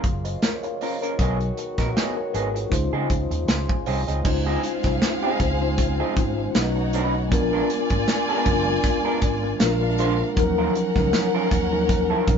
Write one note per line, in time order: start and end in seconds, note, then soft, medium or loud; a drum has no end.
0.00 1.17 C#3 medium
0.00 1.17 F#3 medium
0.00 1.17 A#3 medium
0.00 1.17 F4 medium
0.00 kick medium
0.00 closed hi-hat medium
0.04 0.34 F#1 medium
0.04 muted clean electric guitar stroke soft
0.24 0.42 C5 soft
0.24 0.41 D#5 medium
0.24 muted clean electric guitar stroke soft
0.24 closed hi-hat soft
0.42 0.63 A#4 medium
0.42 0.62 C#5 medium
0.42 muted clean electric guitar stroke soft
0.42 snare loud
0.42 closed hi-hat medium
0.63 0.80 C#5 medium
0.63 0.80 F5 medium
0.63 muted clean electric guitar stroke soft
0.63 closed hi-hat soft
0.81 0.95 A#3 medium
0.81 0.95 C#4 medium
0.81 0.95 F4 medium
0.81 0.95 A#4 medium
0.81 1.01 C5 medium
0.81 1.01 D#5 medium
0.81 open hi-hat medium
1.01 1.14 A#3 soft
1.01 1.14 C#4 soft
1.01 1.14 F4 soft
1.01 1.38 A#4 soft
1.01 1.13 A#4 soft
1.01 1.37 C#5 medium
1.01 closed hi-hat soft
1.18 1.50 B1 medium
1.18 2.70 D#3 medium
1.18 1.37 F#3 medium
1.18 2.70 G#3 medium
1.18 2.70 B3 medium
1.18 1.37 B3 medium
1.18 1.37 D#4 medium
1.18 2.70 F#4 medium
1.18 1.38 G#4 medium
1.18 kick medium
1.18 closed hi-hat medium
1.41 closed hi-hat soft
1.57 muted clean electric guitar stroke soft
1.57 closed hi-hat medium
1.78 1.92 A#1 medium
1.78 1.91 F#3 soft
1.78 1.90 B3 soft
1.78 1.90 D#4 soft
1.78 1.90 A#4 soft
1.78 kick medium
1.78 snare soft
1.78 closed hi-hat soft
1.94 2.13 F#3 medium
1.94 2.13 B3 medium
1.94 2.14 D#4 medium
1.94 2.14 G#4 medium
1.94 2.15 C#5 medium
1.94 2.15 F5 medium
1.94 snare medium
1.94 closed hi-hat medium
2.16 2.33 A#4 medium
2.16 2.33 C#5 medium
2.16 muted clean electric guitar stroke soft
2.34 2.64 G#1 medium
2.34 2.47 F#3 medium
2.34 2.48 B3 soft
2.34 2.48 D#4 medium
2.34 2.53 G#4 medium
2.34 2.48 G#4 medium
2.34 2.53 B4 medium
2.34 closed hi-hat medium
2.54 2.70 F4 soft
2.54 2.91 G#4 medium
2.54 muted clean electric guitar stroke soft
2.54 closed hi-hat soft
2.69 2.88 C#2 loud
2.69 4.23 C#3 medium
2.69 4.23 F3 medium
2.69 3.94 G#3 medium
2.69 3.94 C#4 medium
2.69 4.23 D#4 medium
2.69 3.95 D#4 medium
2.69 3.95 F4 medium
2.69 4.23 C5 medium
2.69 3.49 C5 medium
2.69 muted clean electric guitar stroke soft
2.69 kick medium
2.69 closed hi-hat medium
2.93 3.07 C#3 medium
2.93 3.08 F3 medium
2.93 3.08 C4 medium
2.93 3.08 D#4 medium
2.93 3.08 G#4 medium
3.10 3.27 C#2 medium
3.10 muted clean electric guitar stroke soft
3.10 kick medium
3.10 closed hi-hat medium
3.31 3.45 D#2 medium
3.31 muted clean electric guitar stroke soft
3.31 closed hi-hat medium
3.48 3.65 C#2 medium
3.48 3.67 G#5 soft
3.48 3.68 C6 medium
3.48 muted clean electric guitar stroke soft
3.48 snare loud
3.48 closed hi-hat medium
3.69 3.86 F5 medium
3.69 3.86 G#5 medium
3.69 muted clean electric guitar stroke soft
3.69 kick medium
3.86 4.04 C2 medium
3.86 4.00 F3 medium
3.86 4.00 C4 medium
3.86 4.01 D#4 medium
3.86 4.01 G#4 medium
3.86 4.06 C#5 medium
3.86 4.06 F5 medium
3.86 open hi-hat medium
4.07 4.22 C#2 medium
4.07 4.20 F3 soft
4.07 4.20 C4 soft
4.07 4.19 D#4 soft
4.07 4.19 G#4 soft
4.07 4.25 C5 soft
4.07 4.44 D#5 medium
4.07 closed hi-hat soft
4.24 4.55 C#2 loud
4.24 4.65 G#3 medium
4.24 6.51 C4 medium
4.24 4.65 C#4 medium
4.24 4.65 D#4 medium
4.24 4.66 F4 medium
4.24 6.50 G#4 medium
4.24 4.66 C5 loud
4.24 6.50 F5 medium
4.24 muted clean electric guitar stroke soft
4.24 kick medium
4.24 crash medium
4.46 4.61 F3 medium
4.46 4.61 C4 medium
4.46 4.61 D#4 medium
4.46 4.61 G#4 medium
4.63 muted clean electric guitar stroke soft
4.63 closed hi-hat medium
4.83 4.98 C2 medium
4.83 5.36 G#3 medium
4.83 5.36 C#4 medium
4.83 5.37 D#4 medium
4.83 5.37 F4 medium
4.83 5.37 C5 medium
4.83 muted clean electric guitar stroke soft
4.83 kick medium
4.83 snare soft
4.83 closed hi-hat soft
5.02 muted clean electric guitar stroke soft
5.02 snare medium
5.02 closed hi-hat medium
5.23 5.39 F3 soft
5.23 5.39 C4 medium
5.23 5.39 D#4 medium
5.23 5.40 G#4 medium
5.40 6.00 C#2 medium
5.40 muted clean electric guitar stroke soft
5.40 kick medium
5.40 closed hi-hat medium
5.60 6.00 G#3 medium
5.60 6.00 C#4 medium
5.60 6.01 D#4 medium
5.60 6.01 F4 medium
5.60 6.01 C5 medium
5.60 muted clean electric guitar stroke soft
5.78 muted clean electric guitar stroke soft
5.78 kick medium
5.78 closed hi-hat medium
6.00 6.15 F3 medium
6.00 6.15 C4 medium
6.00 6.14 D#4 medium
6.00 6.14 G#4 medium
6.16 6.47 G#1 medium
6.16 6.54 G#3 medium
6.16 6.53 C#4 medium
6.16 6.54 D#4 medium
6.16 6.55 F4 medium
6.16 6.56 C5 medium
6.16 muted clean electric guitar stroke soft
6.16 kick medium
6.16 closed hi-hat medium
6.39 muted clean electric guitar stroke soft
6.54 7.32 B1 medium
6.54 7.17 A3 medium
6.54 7.17 C#4 medium
6.54 7.30 D#4 medium
6.54 7.17 D#4 medium
6.54 7.18 F#4 medium
6.54 7.18 B4 medium
6.54 7.29 C#5 medium
6.54 7.29 F#5 medium
6.54 snare loud
6.54 closed hi-hat medium
6.76 muted clean electric guitar stroke soft
6.93 7.15 F#3 medium
6.93 7.14 C#4 medium
6.93 7.14 D#4 medium
6.93 7.14 B4 medium
6.93 closed hi-hat medium
7.15 muted clean electric guitar stroke soft
7.30 7.62 A#1 medium
7.30 8.11 G#3 medium
7.30 8.12 B3 loud
7.30 8.12 D4 medium
7.30 8.12 F4 medium
7.30 9.57 F4 medium
7.30 8.13 A#4 loud
7.30 9.57 D5 medium
7.30 9.57 G#5 medium
7.30 muted clean electric guitar stroke soft
7.30 kick loud
7.30 closed hi-hat medium
7.53 7.68 G#3 medium
7.53 7.67 B3 medium
7.53 7.67 D4 medium
7.53 7.67 A#4 medium
7.70 muted clean electric guitar stroke soft
7.70 closed hi-hat medium
7.90 8.04 G#1 medium
7.90 muted clean electric guitar stroke soft
7.90 kick medium
7.90 closed hi-hat soft
8.08 muted clean electric guitar stroke soft
8.08 snare medium
8.08 closed hi-hat medium
8.29 8.45 G#3 medium
8.29 8.45 B3 medium
8.29 8.45 D4 medium
8.29 8.46 A#4 medium
8.44 8.76 F#1 medium
8.44 9.53 G#3 medium
8.44 9.53 B3 medium
8.44 8.52 C#4 medium
8.44 9.54 F4 medium
8.44 9.54 A#4 medium
8.44 muted clean electric guitar stroke soft
8.44 kick medium
8.44 closed hi-hat medium
8.52 9.57 D4 medium
8.68 muted clean electric guitar stroke soft
8.84 muted clean electric guitar stroke soft
8.84 kick medium
8.84 closed hi-hat medium
9.05 9.20 G#3 medium
9.05 9.20 B3 medium
9.05 9.20 D4 medium
9.05 9.20 A#4 medium
9.22 9.52 G#1 medium
9.22 kick medium
9.22 closed hi-hat medium
9.43 muted clean electric guitar stroke soft
9.60 10.21 A#1 medium
9.60 10.23 G#3 medium
9.60 10.23 A#3 medium
9.60 10.36 D4 medium
9.60 10.24 D4 medium
9.60 10.24 F4 medium
9.60 10.36 A#4 medium
9.60 10.25 A#4 medium
9.60 10.36 F5 medium
9.60 snare loud
9.60 closed hi-hat medium
9.81 muted clean electric guitar stroke soft
9.98 10.16 G#3 medium
9.98 10.16 D4 medium
9.98 10.17 F4 medium
9.98 10.17 C5 medium
9.98 closed hi-hat medium
10.20 muted clean electric guitar stroke soft
10.36 10.67 D#2 loud
10.36 10.78 F3 medium
10.36 10.77 F#3 loud
10.36 10.77 C#4 medium
10.36 12.38 C#4 medium
10.36 10.78 D#4 medium
10.36 12.38 A#4 medium
10.36 10.78 A#4 loud
10.36 12.38 F#5 medium
10.36 muted clean electric guitar stroke soft
10.36 kick loud
10.36 closed hi-hat medium
10.58 10.73 F#3 medium
10.58 10.73 C#4 medium
10.58 10.73 F4 medium
10.58 10.73 A#4 medium
10.75 muted clean electric guitar stroke soft
10.75 closed hi-hat medium
10.95 11.10 C#2 medium
10.95 11.49 F3 medium
10.95 11.48 F#3 medium
10.95 11.48 C#4 medium
10.95 11.49 D#4 medium
10.95 11.49 A#4 medium
10.95 muted clean electric guitar stroke soft
10.95 kick medium
10.95 snare soft
11.13 muted clean electric guitar stroke soft
11.13 snare medium
11.13 closed hi-hat medium
11.35 11.50 F#3 medium
11.35 11.50 C#4 medium
11.35 11.49 F4 medium
11.35 11.49 A#4 medium
11.51 12.12 D#2 medium
11.51 muted clean electric guitar stroke soft
11.51 kick medium
11.51 closed hi-hat medium
11.71 12.13 F3 medium
11.71 12.12 F#3 medium
11.71 12.12 C#4 medium
11.71 12.13 D#4 medium
11.71 12.13 A#4 medium
11.71 muted clean electric guitar stroke soft
11.89 muted clean electric guitar stroke soft
11.89 kick medium
11.89 closed hi-hat medium
12.10 12.27 F#3 medium
12.10 12.27 C#4 medium
12.10 12.28 F4 medium
12.10 12.28 A#4 medium
12.28 12.38 A#1 medium
12.28 12.38 F3 medium
12.28 12.38 F#3 medium
12.28 12.38 C#4 medium
12.28 12.38 D#4 medium
12.28 12.38 A#4 medium
12.28 muted clean electric guitar stroke soft
12.28 kick medium
12.28 closed hi-hat medium